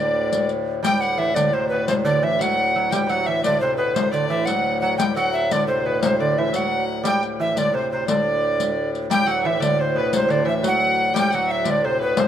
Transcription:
0.00 0.80 D2 medium
0.00 0.81 A2 medium
0.00 0.45 D3 medium
0.00 0.49 D5 medium
0.33 riq medium
0.49 riq soft
0.82 4.97 D2 medium
0.82 4.98 A2 medium
0.82 1.19 G3 medium
0.82 1.00 G5 medium
0.82 1.02 G5 loud
0.82 riq medium
1.01 1.20 F#5 loud
1.01 1.38 F#5 medium
1.01 riq soft
1.18 1.35 E3 medium
1.18 1.36 E5 loud
1.35 1.53 D3 medium
1.35 1.55 D5 loud
1.35 1.56 D5 medium
1.35 riq medium
1.53 1.71 C3 medium
1.53 1.68 C5 medium
1.53 1.71 C5 medium
1.69 1.87 B2 medium
1.69 1.86 B4 medium
1.69 1.92 B4 medium
1.88 2.04 C3 medium
1.88 1.94 C5 loud
1.88 2.06 C5 medium
1.88 riq medium
2.05 2.22 D3 medium
2.05 2.25 D5 loud
2.05 2.22 D5 medium
2.05 riq soft
2.22 2.40 E3 medium
2.22 2.43 E5 loud
2.22 2.41 E5 medium
2.40 2.75 F#3 medium
2.40 2.90 F#5 medium
2.40 2.94 F#5 loud
2.40 riq medium
2.76 2.91 F#3 medium
2.90 3.05 G3 medium
2.90 2.98 G5 medium
2.90 3.11 G5 loud
2.90 riq medium
3.06 3.27 F#3 loud
3.06 3.09 G3 medium
3.06 3.28 F#5 medium
3.06 riq soft
3.26 3.45 E3 medium
3.26 3.44 E5 loud
3.26 3.45 E5 medium
3.44 3.62 D3 medium
3.44 3.63 D5 medium
3.44 3.60 D5 loud
3.44 riq medium
3.60 3.79 C3 medium
3.60 3.77 C5 medium
3.60 3.76 C5 medium
3.77 3.96 B2 medium
3.77 3.94 B4 medium
3.77 3.96 B4 medium
3.95 4.12 C3 medium
3.95 4.12 C5 loud
3.95 4.13 C5 medium
3.95 riq medium
4.11 4.30 D3 medium
4.11 4.47 D5 medium
4.11 4.28 D5 medium
4.11 riq soft
4.29 4.48 E3 medium
4.29 4.47 E5 medium
4.46 4.81 F#3 medium
4.46 4.80 F#5 loud
4.46 4.81 F#5 medium
4.46 riq medium
4.81 4.98 F#3 medium
4.81 4.97 F#5 medium
4.81 4.98 F#5 medium
4.98 9.09 D2 medium
4.98 9.08 A2 medium
4.98 5.16 G3 medium
4.98 5.04 G5 loud
4.98 5.15 G5 medium
4.98 riq medium
5.16 5.52 F#3 medium
5.16 5.32 F#5 medium
5.16 5.48 F#5 medium
5.16 riq soft
5.33 5.54 E5 medium
5.51 5.68 D3 medium
5.51 5.67 D5 medium
5.51 5.66 D5 loud
5.51 riq medium
5.67 5.86 C3 medium
5.67 5.87 C5 medium
5.67 5.86 C5 medium
5.85 6.03 B2 medium
5.85 6.04 B4 medium
5.85 6.03 B4 medium
6.03 6.20 C3 medium
6.03 6.21 C5 medium
6.03 6.19 C5 medium
6.03 riq medium
6.20 6.38 D3 medium
6.20 6.37 D5 medium
6.20 6.40 D5 medium
6.38 6.48 E3 medium
6.38 6.57 E5 medium
6.48 6.52 G3 medium
6.53 7.03 F#3 medium
6.53 6.84 F#5 loud
6.53 7.04 F#5 medium
6.53 riq medium
7.04 7.20 G3 medium
7.04 7.21 G5 medium
7.04 7.23 G5 loud
7.04 riq medium
7.23 riq soft
7.40 7.56 E3 medium
7.40 7.60 E5 medium
7.40 7.56 E5 medium
7.56 7.73 D3 medium
7.56 7.76 D5 loud
7.56 7.74 D5 medium
7.56 riq medium
7.74 7.91 C3 medium
7.74 7.91 C5 medium
7.74 7.90 C5 medium
7.92 8.08 C3 medium
7.92 8.09 C5 medium
7.92 8.07 C5 medium
8.08 8.90 D3 medium
8.08 8.93 D5 medium
8.08 8.89 D5 medium
8.08 riq medium
8.60 riq soft
8.95 riq soft
9.10 12.28 D2 medium
9.10 12.28 A2 medium
9.10 9.26 G3 medium
9.10 9.28 G5 medium
9.10 9.32 G5 loud
9.10 riq medium
9.26 9.45 F#3 loud
9.26 9.42 F#5 loud
9.26 riq soft
9.31 9.48 F#5 loud
9.42 9.60 E3 medium
9.42 9.62 E5 medium
9.47 9.65 E5 loud
9.60 9.96 D3 medium
9.60 9.80 D5 medium
9.60 9.83 D5 loud
9.60 riq medium
9.79 9.95 C5 medium
9.79 10.00 C5 medium
9.96 10.13 B2 medium
9.96 10.12 B4 medium
9.96 10.14 B4 loud
10.13 10.28 C3 medium
10.13 10.46 C5 medium
10.13 10.32 C5 loud
10.13 riq medium
10.28 10.45 D3 medium
10.28 10.47 D5 loud
10.28 riq soft
10.45 10.64 E3 medium
10.45 10.66 E5 medium
10.45 10.54 E5 loud
10.63 11.11 F#3 medium
10.63 11.15 F#5 medium
10.63 riq medium
10.67 11.13 F#5 loud
11.14 11.32 G3 medium
11.14 11.32 G5 loud
11.14 riq medium
11.19 11.36 G5 loud
11.31 11.68 F#3 loud
11.31 11.47 F#5 medium
11.31 11.53 F#5 loud
11.31 riq soft
11.47 11.66 E5 medium
11.51 11.72 E5 loud
11.65 11.83 D3 medium
11.65 11.82 D5 medium
11.65 riq medium
11.70 11.87 D5 loud
11.84 12.01 C3 medium
11.84 12.01 C5 medium
11.99 12.18 B2 medium
11.99 12.19 B4 medium
11.99 12.21 B4 loud
12.17 12.28 C3 medium
12.17 12.28 C5 medium
12.17 12.28 C5 loud
12.17 riq medium

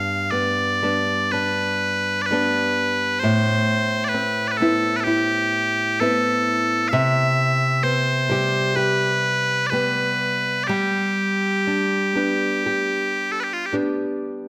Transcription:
0.00 3.21 G2 medium
0.00 0.32 B3 medium
0.00 0.83 D4 medium
0.00 0.31 F5 medium
0.31 0.83 B3 soft
0.31 1.32 D5 medium
0.82 2.28 G3 soft
0.82 2.31 B3 soft
0.82 1.32 D4 soft
1.32 2.29 D4 soft
1.32 2.22 B4 medium
2.22 2.26 D5 medium
2.26 3.19 B4 medium
2.31 3.31 G3 soft
2.31 4.14 B3 medium
2.31 3.32 D4 medium
3.19 4.05 C5 medium
3.23 6.92 A2 medium
4.05 4.09 D5 medium
4.09 4.48 B4 medium
4.14 4.61 C4 medium
4.48 4.57 B4 medium
4.48 4.51 D5 medium
4.57 6.00 B3 soft
4.57 4.96 A4 medium
4.61 6.01 C4 medium
4.61 5.07 E4 medium
4.96 5.00 B4 medium
5.00 6.00 G4 medium
5.00 5.04 A4 medium
5.07 6.02 E4 medium
6.00 7.83 B3 medium
6.00 7.83 C4 medium
6.00 8.31 E4 medium
6.00 6.88 A4 medium
6.88 7.83 E5 loud
6.88 6.91 F5 medium
6.93 10.69 C3 medium
7.83 9.72 B3 medium
7.83 8.75 C5 medium
8.29 9.71 G3 medium
8.29 8.76 G4 medium
8.75 9.73 G4 medium
8.75 9.67 B4 medium
9.67 10.64 B4 medium
9.67 9.70 D5 medium
9.72 10.69 G3 soft
9.72 11.67 B3 soft
9.72 12.17 G4 medium
10.64 13.32 G4 medium
10.64 10.67 D5 medium
10.69 14.48 G3 medium
11.67 12.16 D4 soft
12.15 13.72 B3 soft
12.15 13.73 D4 soft
12.15 12.66 G4 soft
12.66 13.73 G4 soft
13.32 13.40 A4 medium
13.40 13.53 G4 soft
13.40 13.44 B4 soft
13.53 13.66 F4 soft
13.66 13.74 G4 soft
13.72 14.48 B3 soft
13.72 14.48 D4 soft
13.72 14.48 G4 soft

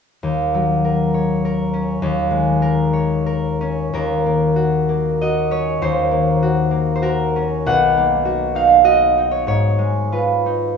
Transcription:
0.23 2.01 D#2 soft
0.54 2.05 F#3 soft
0.85 1.44 A#4 soft
1.14 2.92 C#5 soft
1.45 2.61 A#4 soft
1.74 3.60 C#4 soft
2.02 3.93 D#2 medium
2.31 3.96 G#3 soft
2.62 3.25 A#4 soft
2.93 5.50 C#5 soft
3.26 3.93 A#4 soft
3.61 5.50 C#4 soft
3.93 5.80 D#2 soft
3.93 7.01 A#4 medium
4.26 4.88 A#3 soft
4.56 5.21 F#4 soft
4.89 6.10 A#3 soft
5.21 6.41 F#4 soft
5.21 5.85 D#5 medium
5.51 7.35 C#4 soft
5.51 7.70 C#5 medium
5.82 7.70 D#2 medium
5.82 6.94 C5 medium
6.11 6.70 A#3 soft
6.43 7.01 F#4 soft
6.71 7.96 A#3 soft
6.96 7.08 C5 medium
7.02 8.24 F#4 soft
7.02 9.51 A#4 medium
7.36 7.71 C#4 soft
7.66 9.50 B1 medium
7.66 9.50 F#5 medium
7.97 9.51 A#3 soft
8.25 8.83 F#4 soft
8.55 9.16 D#4 soft
8.55 9.08 F5 medium
8.84 9.50 F#4 soft
8.84 10.77 D#5 medium
9.18 10.45 D#4 soft
9.31 9.46 C#5 medium
9.47 10.77 G#2 soft
9.47 10.77 C#5 medium
9.78 10.77 G#3 soft
10.12 10.77 F4 soft
10.12 10.77 B4 soft
10.46 10.77 D#4 soft

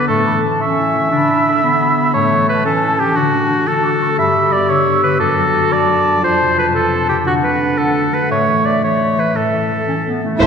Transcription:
0.00 1.46 A3 soft
0.00 0.11 B3 soft
0.00 0.10 F#4 soft
0.08 1.14 A2 soft
0.08 0.43 A3 soft
0.08 0.42 A4 medium
0.08 0.26 C#6 soft
0.26 0.61 E3 soft
0.26 0.32 B5 soft
0.43 1.14 C#4 soft
0.43 0.61 A5 soft
0.61 0.94 E3 soft
0.61 1.09 C#4 soft
0.61 2.10 E5 medium
0.61 1.12 C#6 soft
0.78 1.13 E4 soft
0.96 1.14 E3 soft
1.11 2.16 D3 soft
1.11 1.62 D4 medium
1.11 2.13 B5 soft
1.29 1.62 D4 soft
1.47 2.48 A3 soft
1.63 2.16 B3 soft
1.63 1.96 D4 soft
1.81 2.16 F#4 soft
1.98 2.16 D4 soft
2.14 3.18 A2 soft
2.14 2.66 A3 soft
2.14 2.47 C#5 medium
2.14 3.41 A5 soft
2.31 2.65 E3 soft
2.49 3.33 A3 soft
2.49 2.65 B4 medium
2.65 2.99 E3 soft
2.65 3.17 C#4 soft
2.65 3.01 A4 medium
2.83 3.18 E4 soft
3.00 3.18 E3 soft
3.00 3.17 G4 medium
3.16 4.20 D3 soft
3.16 3.69 D4 soft
3.16 3.69 F#4 medium
3.34 3.67 A3 soft
3.51 4.86 D4 soft
3.67 4.01 A3 soft
3.67 4.18 F#4 soft
3.67 4.18 A4 medium
3.67 3.84 A5 soft
3.83 4.20 A4 soft
3.83 3.89 D6 soft
4.01 4.20 A3 soft
4.01 4.07 C#6 soft
4.18 5.22 G2 soft
4.18 5.21 G4 medium
4.18 4.54 E5 medium
4.18 4.68 B5 soft
4.36 4.69 D3 soft
4.52 5.23 B3 soft
4.52 4.71 D5 medium
4.69 5.02 D3 soft
4.69 5.03 C#5 medium
4.69 5.20 E6 soft
4.87 5.88 D4 soft
5.03 5.22 D3 soft
5.03 5.19 B4 medium
5.20 6.25 F#2 soft
5.20 6.21 F#4 medium
5.20 5.74 A4 medium
5.20 5.72 D6 soft
5.38 5.71 F#3 soft
5.55 6.57 A3 soft
5.71 6.05 F#3 soft
5.71 6.24 D5 medium
5.71 6.23 A5 soft
5.90 6.25 D4 soft
6.06 6.25 F#3 soft
6.21 7.28 F2 soft
6.21 7.27 F4 soft
6.21 6.58 C5 medium
6.21 6.72 A5 soft
6.41 6.74 C3 soft
6.58 7.43 A3 soft
6.58 6.67 B4 medium
6.75 7.09 C3 soft
6.75 7.09 A4 medium
6.75 7.27 A5 soft
6.93 7.29 C4 soft
7.09 7.29 C3 soft
7.09 7.17 G4 medium
7.26 8.32 D3 soft
7.26 8.13 D4 soft
7.26 7.35 F#4 medium
7.26 7.77 F#5 soft
7.44 7.77 A3 soft
7.44 7.80 B4 medium
7.61 8.32 D4 soft
7.78 8.11 A3 soft
7.78 8.16 A4 soft
7.78 8.29 F#5 soft
7.95 8.31 F#4 soft
8.12 8.64 A3 soft
8.12 8.31 B4 medium
8.30 9.34 A2 soft
8.30 9.81 A3 soft
8.30 8.67 C#5 medium
8.30 8.82 E5 soft
8.47 8.81 E3 soft
8.65 9.70 A3 soft
8.65 8.83 D5 medium
8.82 9.16 E3 soft
8.82 9.21 C#5 soft
8.82 9.34 E5 soft
9.00 10.05 C#4 soft
9.17 9.36 E3 soft
9.17 9.38 B4 soft
9.35 10.41 A2 soft
9.35 10.24 A4 soft
9.35 10.23 E5 soft
9.53 9.87 E3 soft
9.71 10.47 A3 soft
9.87 10.23 E3 soft
9.87 9.96 C#4 soft
10.06 10.23 B3 soft
10.06 10.43 C#4 soft
10.24 10.43 E3 soft
10.24 10.41 A3 soft
10.41 10.47 A1 medium
10.41 10.47 A2 soft
10.41 10.47 E4 medium
10.41 10.47 C5 medium
10.41 10.47 E5 medium
10.41 10.47 A5 soft

